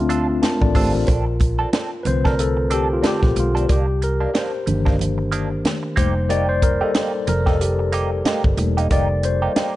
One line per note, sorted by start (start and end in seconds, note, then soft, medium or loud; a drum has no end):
0.00 0.39 D2 medium
0.00 1.10 A3 medium
0.00 1.10 C4 medium
0.00 1.10 D4 medium
0.00 0.43 F4 medium
0.09 0.26 D4 medium
0.09 0.26 F4 medium
0.09 0.27 A4 medium
0.09 closed hi-hat medium
0.29 muted clean electric guitar stroke soft
0.42 0.61 F4 soft
0.42 0.61 A#4 medium
0.42 1.04 A5 medium
0.42 snare loud
0.42 closed hi-hat medium
0.42 high conga medium
0.61 0.73 A1 medium
0.61 0.75 A4 medium
0.61 0.75 D5 medium
0.61 muted clean electric guitar stroke soft
0.61 kick medium
0.75 0.92 G#1 medium
0.75 0.92 D4 medium
0.75 0.92 F4 medium
0.75 0.94 G4 medium
0.75 0.92 A4 medium
0.75 0.94 C5 medium
0.75 kick medium
0.75 open hi-hat medium
0.75 high conga medium
0.93 1.06 A1 medium
0.93 1.26 F4 soft
0.93 1.26 A#4 medium
0.93 muted clean electric guitar stroke soft
1.07 1.64 A#1 medium
1.07 1.24 C4 medium
1.07 1.24 D4 medium
1.07 1.24 A4 medium
1.07 kick medium
1.07 closed hi-hat medium
1.07 muted conga soft
1.27 muted clean electric guitar stroke soft
1.40 muted clean electric guitar stroke soft
1.40 kick medium
1.40 closed hi-hat medium
1.40 muted conga soft
1.59 1.69 C4 soft
1.59 1.69 D4 soft
1.59 1.69 A4 medium
1.73 1.90 C4 medium
1.73 1.90 D4 medium
1.73 1.90 A4 medium
1.73 snare loud
1.73 closed hi-hat medium
1.73 high conga medium
2.03 3.00 C2 medium
2.03 3.65 D3 soft
2.03 3.65 A3 soft
2.03 3.66 C4 medium
2.03 2.07 B4 medium
2.03 2.24 C5 medium
2.03 muted clean electric guitar stroke soft
2.03 closed hi-hat medium
2.03 muted conga medium
2.03 low conga medium
2.25 2.35 C4 soft
2.25 2.34 D4 soft
2.25 2.34 A4 medium
2.25 2.39 A#4 medium
2.25 kick medium
2.25 snare soft
2.39 2.73 A4 medium
2.39 muted clean electric guitar stroke soft
2.39 closed hi-hat medium
2.57 muted clean electric guitar stroke soft
2.70 2.87 C4 medium
2.70 2.87 D4 medium
2.70 2.92 G4 medium
2.70 2.88 A4 medium
2.70 closed hi-hat medium
2.91 3.06 F4 medium
2.91 muted clean electric guitar stroke soft
3.03 3.20 C4 medium
3.03 3.20 D4 medium
3.03 3.20 A4 medium
3.03 snare loud
3.03 closed hi-hat medium
3.03 high conga medium
3.07 3.36 G4 medium
3.23 3.35 A#1 medium
3.23 kick medium
3.23 snare soft
3.36 3.65 B1 medium
3.36 3.72 F4 medium
3.36 muted clean electric guitar stroke soft
3.36 closed hi-hat medium
3.36 high conga medium
3.55 3.65 C4 soft
3.55 3.65 D4 soft
3.55 3.64 A4 medium
3.55 closed hi-hat soft
3.69 4.25 C2 loud
3.69 3.85 D#3 medium
3.69 3.85 A#3 medium
3.69 3.86 D4 medium
3.69 4.01 G4 medium
3.69 kick loud
3.69 closed hi-hat medium
3.69 muted conga soft
3.88 muted clean electric guitar stroke soft
4.02 4.37 A#4 medium
4.02 muted clean electric guitar stroke soft
4.02 closed hi-hat medium
4.20 4.30 D#3 soft
4.20 4.30 A#3 soft
4.20 4.30 D4 medium
4.34 4.50 D#3 medium
4.34 4.51 A#3 medium
4.34 4.51 D4 medium
4.34 5.30 C5 medium
4.34 snare loud
4.34 closed hi-hat medium
4.34 high conga medium
4.66 5.61 G1 medium
4.66 5.61 D#3 medium
4.66 5.61 A#3 soft
4.66 5.62 D4 medium
4.66 muted clean electric guitar stroke soft
4.66 closed hi-hat medium
4.66 muted conga soft
4.66 low conga medium
4.85 4.96 D#3 soft
4.85 4.95 A#3 soft
4.85 4.95 D4 medium
4.85 kick medium
4.85 snare soft
4.99 muted clean electric guitar stroke soft
4.99 closed hi-hat medium
4.99 low conga medium
5.18 muted clean electric guitar stroke soft
5.32 5.48 D#3 medium
5.32 5.48 A#3 medium
5.32 5.49 D4 medium
5.32 closed hi-hat medium
5.50 muted clean electric guitar stroke soft
5.65 snare medium
5.65 closed hi-hat medium
5.65 high conga medium
5.83 muted clean electric guitar stroke soft
5.96 6.81 F1 medium
5.96 8.54 G3 medium
5.96 6.13 A#3 medium
5.96 8.54 A#3 soft
5.96 6.13 D#4 medium
5.96 8.55 D#4 medium
5.96 6.14 G4 medium
5.96 6.31 C5 medium
5.96 kick loud
5.96 closed hi-hat medium
5.96 high conga medium
6.29 6.46 A#3 medium
6.29 6.46 D#4 medium
6.29 6.47 G4 medium
6.29 6.48 D5 loud
6.29 closed hi-hat medium
6.29 muted conga soft
6.49 6.62 C5 medium
6.62 6.71 A#4 medium
6.62 muted clean electric guitar stroke soft
6.62 kick medium
6.62 closed hi-hat medium
6.81 6.91 A#3 soft
6.81 6.91 D#4 soft
6.81 6.91 G4 medium
6.81 7.29 A4 medium
6.94 7.11 A#3 medium
6.94 7.11 D#4 medium
6.94 7.12 G4 medium
6.94 snare loud
6.94 closed hi-hat medium
6.94 high conga medium
7.27 8.22 F1 medium
7.27 7.46 A#4 medium
7.27 muted clean electric guitar stroke soft
7.27 closed hi-hat medium
7.27 muted conga medium
7.27 low conga medium
7.46 7.57 A#3 soft
7.46 7.56 D#4 medium
7.46 7.56 G4 medium
7.46 7.61 A4 medium
7.46 kick medium
7.46 snare soft
7.60 7.91 G4 medium
7.60 muted clean electric guitar stroke soft
7.60 closed hi-hat medium
7.79 muted clean electric guitar stroke soft
7.92 8.09 A#3 medium
7.92 8.09 D#4 medium
7.92 8.10 G4 medium
7.92 closed hi-hat medium
8.25 8.42 A#3 medium
8.25 8.42 D#4 medium
8.25 8.42 G4 medium
8.25 snare medium
8.25 closed hi-hat medium
8.25 high conga medium
8.44 8.56 G1 medium
8.44 kick medium
8.57 8.86 E1 medium
8.57 9.52 G3 soft
8.57 9.52 A#3 soft
8.57 9.52 D#4 medium
8.57 muted clean electric guitar stroke soft
8.57 closed hi-hat medium
8.57 high conga medium
8.77 8.87 A#3 soft
8.77 8.87 D#4 medium
8.77 8.86 G4 soft
8.77 closed hi-hat soft
8.91 9.47 F1 medium
8.91 9.07 A#3 medium
8.91 9.07 D#4 medium
8.91 9.08 G4 medium
8.91 9.06 D5 medium
8.91 kick loud
8.91 closed hi-hat medium
8.91 muted conga soft
9.23 9.76 C5 medium
9.23 muted clean electric guitar stroke soft
9.23 closed hi-hat medium
9.42 9.52 A#3 soft
9.42 9.52 D#4 soft
9.42 9.51 G4 medium
9.56 9.72 A#3 medium
9.56 9.72 D#4 medium
9.56 9.73 G4 medium
9.56 snare loud
9.56 closed hi-hat medium
9.56 high conga medium